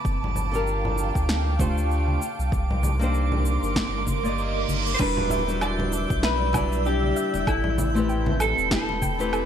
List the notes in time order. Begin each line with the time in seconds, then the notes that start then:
Already playing: F5 G5 A5 D6
0.05 G1, kick, shaker
0.24 low conga
0.36 low conga, shaker
0.52 D4 F4 G4 A4 A#4, shaker
0.67 shaker
0.85 low conga
0.98 shaker
1.15 D2, kick, shaker
1.29 snare, shaker
1.59 A3 D4 F4 G4 C5, kick, high conga, shaker
1.78 shaker
1.91 shaker
2.08 high conga
2.22 A#4 C6 D6, shaker
2.39 C2, shaker
2.52 C2, kick, shaker
2.71 low conga
2.83 high conga, low conga, shaker
2.99 A#3 D4 D#4 G4 C5, shaker
3.14 shaker
3.32 high conga, low conga
3.45 shaker
3.63 G1, shaker
3.76 kick, snare, reverse cymbal, shaker
4.07 kick, high conga, shaker
4.23 A#3 D#4 G4 D5 D#5, shaker
4.38 shaker
4.68 G1, high conga, shaker
4.87 shaker
4.94 C5
4.99 E1 G3 D4 E4 F#4 B4 D5 E5 E6 G6, kick, crash, shaker
5.17 low conga
5.30 E5, low conga, shaker
5.47 G3 D4 E4 F#4 B4, shaker
5.61 F#4 D5, low woodblock, shaker
5.79 muted conga, low conga
5.93 D4, shaker
6.10 B1, kick, shaker
6.23 B4 E5, snare, shaker
6.53 G3 D4 E4 F#4 G4 D5, kick, muted conga, high conga, low woodblock, shaker
6.72 shaker
6.86 D4 G4, shaker
7.03 high conga
7.16 E5, shaker
7.34 E1, muted conga, shaker
7.47 A1 C4 E4 A4 A5 B5, kick, low woodblock, shaker
7.64 low conga
7.78 E4, high conga, low conga, shaker
7.94 A3 C4 E4 G4 B4, muted conga, shaker
8.09 G5, shaker
8.26 muted conga, high conga, low conga
8.40 A4, low woodblock, shaker
8.58 E1, shaker
8.71 E4 A4, kick, snare, shaker
8.89 muted conga
9.02 G5, kick, high conga, shaker
9.19 A3 C4 E4 G4 B4, shaker
9.33 A4, low woodblock, shaker